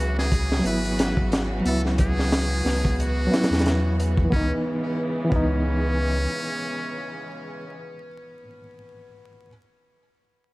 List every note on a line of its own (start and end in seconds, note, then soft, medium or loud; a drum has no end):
0.00 0.62 C#2 loud
0.00 4.28 C#3 medium
0.00 4.27 E3 medium
0.00 0.58 F#3 medium
0.00 0.61 B3 medium
0.00 1.65 B3 medium
0.00 4.27 B3 medium
0.00 0.63 E4 medium
0.00 0.14 F#4 medium
0.00 4.27 F#4 medium
0.00 0.95 E5 medium
0.00 4.32 B5 medium
0.19 0.62 G#4 loud
0.19 snare soft
0.32 kick loud
0.32 closed hi-hat medium
0.52 snare medium
0.60 1.59 F#3 medium
0.60 1.61 B3 medium
0.65 1.62 G#1 medium
0.65 1.63 E4 medium
0.65 1.28 B4 loud
0.65 closed hi-hat medium
0.85 closed hi-hat soft
0.99 snare loud
0.99 closed hi-hat medium
1.17 kick loud
1.32 snare loud
1.32 closed hi-hat medium
1.61 3.25 F#3 medium
1.61 3.28 B3 medium
1.65 2.62 C#2 loud
1.65 2.62 B3 medium
1.65 3.30 E4 medium
1.65 1.81 A4 loud
1.65 closed hi-hat medium
1.86 snare soft
1.98 2.95 G#4 loud
1.98 kick loud
1.98 closed hi-hat medium
2.19 snare soft
2.32 snare loud
2.32 closed hi-hat medium
2.64 3.29 C#2 loud
2.64 2.86 B3 medium
2.64 snare soft
2.64 open hi-hat medium
2.85 kick loud
3.00 3.96 F#4 loud
3.00 closed hi-hat medium
3.27 4.25 F#3 medium
3.31 4.27 B3 medium
3.31 3.63 E4 medium
3.31 4.29 E4 medium
3.31 snare medium
3.31 closed hi-hat medium
3.43 snare medium
3.43 closed hi-hat medium
3.51 4.28 E2 loud
3.51 snare medium
3.51 closed hi-hat medium
3.59 snare medium
3.59 closed hi-hat medium
3.65 3.97 B3 medium
3.65 snare loud
3.65 closed hi-hat medium
4.00 closed hi-hat medium
4.17 kick loud
4.25 4.48 E3 medium
4.30 4.52 C#2 loud
4.30 7.74 C#3 medium
4.30 7.74 E3 medium
4.30 7.74 G#3 medium
4.30 4.51 B3 medium
4.30 7.74 B3 medium
4.30 4.52 C#4 medium
4.30 kick loud
4.36 4.54 D#4 medium
5.24 8.40 E3 medium
5.30 6.28 C#2 loud
5.30 8.43 B3 medium
5.30 5.52 B3 loud
5.30 7.74 C#4 loud
5.30 kick loud
5.36 8.46 D#4 loud